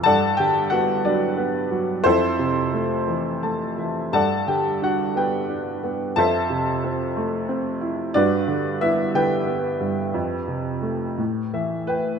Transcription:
X:1
M:6/8
L:1/8
Q:3/8=59
K:G
V:1 name="Upright piano"
[Adfa] [Gg] [Ff] [DBd]2 z | [CEAc]4 a e | [Adfa] [Gg] [Ff] [GBg]2 z | [Acea]4 z2 |
[DFBd]2 [Ee] [GBg]3- | [GBg]4 e [Bg] |]
V:2 name="Upright piano" clef=bass
G,, D, B, F, B, F, | =F,, C, A, E, A, E, | G,, D, D B, D B, | =F,, C, C A, C E |
G,, D, B, D, B, G,, | =F,, C, A, A,, E, E |]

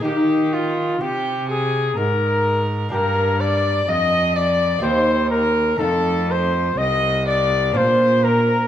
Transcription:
X:1
M:3/4
L:1/8
Q:1/4=62
K:Eb
V:1 name="Trumpet"
G F G A B z | [K:Fmix] B d e d c B | A c e d c B |]
V:2 name="Violin"
G F G A B2 | [K:Fmix] B d e d c B | A c e d c B |]
V:3 name="Lute"
[B,EG]6 | [K:Fmix] [B,DG]4 [B,EG]2 | [A,EF]4 [DF]2 |]
V:4 name="Lute" clef=bass
E,2 C,2 A,,2 | [K:Fmix] G,,2 F,,2 E,,2 | F,,2 z2 B,,2 |]
V:5 name="Cello" clef=bass
E,2 C,2 A,,2 | [K:Fmix] G,,2 F,,2 E,,2 | F,,2 C,,2 B,,2 |]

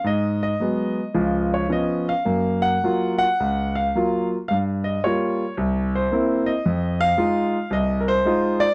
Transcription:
X:1
M:4/4
L:1/16
Q:"Swing" 1/4=110
K:Fm
V:1 name="Grand piano"
e2 e8 d2 e2 f2- | f2 _g4 g4 f4 z2 | f2 e2 d4 z2 c4 e2- | e2 f6 e3/2 B/2 c4 =d2 |]
V:2 name="Grand piano"
A,,4 [_G,A,_C]2 z2 [D,,F,]4 [F,CD]2 z2 | [_G,,B,]4 [_G,B,F]2 z2 D,,4 [G,B,F]2 z2 | G,,4 [G,B,F]2 z2 C,,4 [B,C=E]2 z2 | F,,4 [A,EF]2 z2 C,,4 [A,EF]2 z2 |]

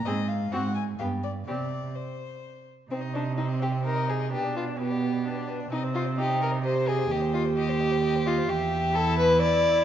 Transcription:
X:1
M:3/4
L:1/16
Q:1/4=129
K:Cm
V:1 name="Violin"
e2 f2 _g2 a2 f2 d2 | d4 c6 z2 | c e c e c e c e c e c e | =B d B d B d B d B d B d |
e c e c e c e c e c e c | e c e c e c e c e c e c | [K:Ephr] e12 |]
V:2 name="Violin"
A2 z2 _G2 z2 =G2 z2 | G2 z8 z2 | C2 D2 E2 G2 B2 A2 | G2 F2 G6 z2 |
E2 F2 G2 B2 c2 A2 | G2 F2 G6 F2 | [K:Ephr] G4 A2 B2 d4 |]
V:3 name="Viola"
C2 z2 C2 z2 =B,2 z2 | C2 z8 z2 | E4 C4 E4 | D4 =B,4 D4 |
C4 E4 G4- | G12- | [K:Ephr] G4 E8 |]
V:4 name="Cello" clef=bass
A,,4 A,,4 G,,4 | C,4 z8 | C,12 | =B,,12 |
C,12 | E,,12 | [K:Ephr] E,,12 |]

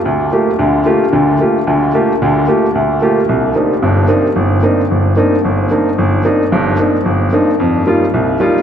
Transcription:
X:1
M:4/4
L:1/8
Q:"Swing" 1/4=223
K:Cdor
V:1 name="Grand piano"
D,,2 [A,B,FG] z [D,,D,]2 [A,B,FG] z | [D,,D,]2 [A,B,FG] z [D,,D,]2 [A,B,FG] z | [D,,D,]2 [A,B,FG] z D,,2 [A,B,FG] z | C,,2 [B,CDE] z [G,,,G,,]2 [B,CDE] z |
G,,,2 [B,CDE] z G,,,2 [B,CDE] z | G,,,2 [B,CDE] z G,,,2 [B,CDE] z | [G,,,G,,]2 [B,CDE] z G,,,2 [B,CDE] z | [K:Cphr] F,,2 [G,B,EF] z C,,2 [G,B,EF] z |]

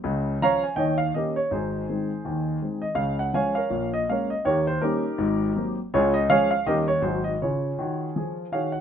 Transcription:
X:1
M:4/4
L:1/8
Q:"Swing" 1/4=163
K:Db
V:1 name="Grand piano"
z2 [dfb] a [de=g] f [=GBe] d | [EAc]6- [EAc] e | f g [dfa] [Bdf]2 e [Bdf] e | [=GBd] c [EGB]4- [EGB] z |
[FAd] e [Adf] f [=GBe] d [_GAc] e | [FAd]6 [Adf] g |]
V:2 name="Grand piano" clef=bass
[D,,D,]2 [F,D]2 [E,,E,]2 [E,B,D]2 | [A,,,A,,]2 [E,A,C]2 [E,,E,]2 [E,A,C]2 | [D,,D,]2 [F,A,D]2 [B,,,B,,]2 [A,B,D]2 | [E,,E,]2 [=G,B,D]2 [A,,,A,,]2 [_G,B,C]2 |
[D,,D,]2 [F,A,D]2 [E,,E,=G,D]2 [A,,,A,,_G,A,E]2 | D,2 [E,G]2 [F,A]2 [E,G]2 |]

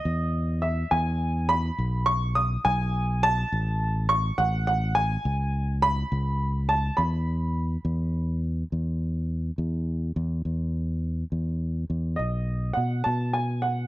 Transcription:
X:1
M:6/8
L:1/8
Q:3/8=69
K:Bmix
V:1 name="Upright piano"
d2 e g2 b- | b c' d' g2 a- | a2 c' f f g- | g2 b3 a |
b4- b z | z6 | z6 | d2 f a g f |]
V:2 name="Fingered electric bass" clef=bass
E,,3 E,,3 | B,,,3 B,,,3 | A,,,3 A,,,3 | C,,3 C,,3 |
E,,3 E,,3 | E,,3 E,,2 E,, | E,,3 E,,2 E,, | B,,,2 B,, B,,3 |]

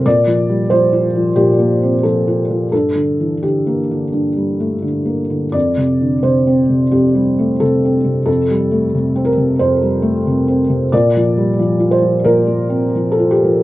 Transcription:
X:1
M:4/4
L:1/16
Q:1/4=88
K:F
V:1 name="Felt piano"
d4 c4 G4 A4 | A4 G8 z4 | d4 c4 G4 A4 | A6 B2 c6 z2 |
d6 c2 B4- B A G2 |]
V:2 name="Felt piano" clef=bass
(3B,,2 F,2 G,2 (3F,2 F2 F,2 (3B,,2 B,2 C2 (3F,2 F2 F,2 | (3G,,2 D,2 E,2 (3D,2 B,2 D,2 (3G,,2 G,2 A,2 (3D,2 B,2 D,2 | (3F,,2 C,2 D,2 (3C,2 C2 C,2 (3F,,2 G,2 A,2 (3C,2 C2 C,2 | (3F,,2 G,2 A,2 (3C,2 C2 C,2 (3F,,2 G,2 A,2 (3C,2 C2 C,2 |
(3B,,2 F,2 G,2 (3F,2 F2 F,2 (3B,,2 B,2 C2 (3F,2 F2 F,2 |]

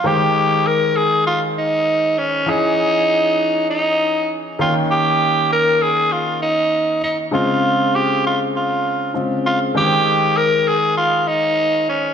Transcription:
X:1
M:4/4
L:1/8
Q:1/4=99
K:Ab
V:1 name="Tenor saxophone"
G2 B A F E2 D | E4 E2 z F | G2 B A F E2 E | F2 G F F2 z F |
G2 B A F E2 D |]
V:2 name="Grand piano"
[E,A,cg]8 | [_F,DEA]6- [F,DEA] [E,B,Dg]- | [E,B,Dg]6- [E,B,Dg] z | [D,A,CF]6 [D,A,CF]2 |
[E,A,cg]8 |]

